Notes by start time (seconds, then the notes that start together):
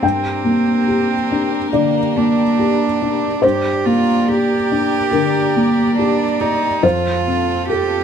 0.02 G2 C4 D4 G4 A#4 G5
0.45 A#3
0.88 G4
1.32 D4
1.72 D3 A#3 D5
2.16 A#3 D4
2.59 G4
3.02 D4
3.42 G2 G4 A#4 C5 D5
3.85 A#3 F4
4.28 G4
4.72 D4
5.11 D3 A#4
5.56 A#3
5.97 D4 G4
6.41 D#4 D5
6.81 F2 C4 F4 A4 C5
7.27 C4
7.69 G4 A4